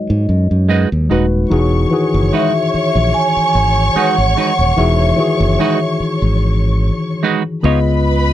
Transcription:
Already playing: F#3 G#3 D#4 F#4 C#5 D#5
0.10 G#2
0.29 F#2
0.51 F#2
0.69 G#3 D#4 F#4 B4
0.92 D#2
1.09 D#1 G#3 D#4 F#4 B4
1.50 E1 E3 D#4 F#4 G#4 C#5 C#6
1.91 D#3 E3 F#4 G#4
2.14 F#1
2.33 G#3 D#4 F#4 B4 E5
2.74 muted fingered electric bass stroke
2.95 A#1
3.14 G#5
3.37 muted fingered electric bass stroke
3.55 G#1
3.95 G#3 D#4 F#4 B4 F#5, muted fingered electric bass stroke
4.18 G#1
4.36 G#3 D#4 F#4 B4
4.59 D#1
4.77 E1 E3 D#4 F#4 G#4 E5
5.17 D#3 E3 F#4 G#4
5.40 F#1
5.59 G#3 D#4 F#4 B4
6.00 muted fingered electric bass stroke
6.22 G#1
7.23 G#3 D#4 F#4 B4
7.63 C#2 C#3 B3 D#4 F4 B4 C#5 D#5 B5

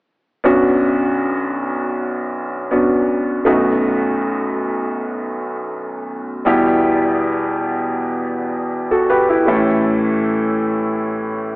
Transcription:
0.44 B1 F#2 B3 C#4 D4 F#4
2.71 B3 C#4 D4 F#4
3.45 B1 F#2 A3 B3 D#4 F#4
6.45 E2 B2 G3 B3 E4 G4
8.91 F#4 A4
9.10 G4 B4
9.29 E4 G4
9.47 A2 E3 A3 C#4 E4 A4

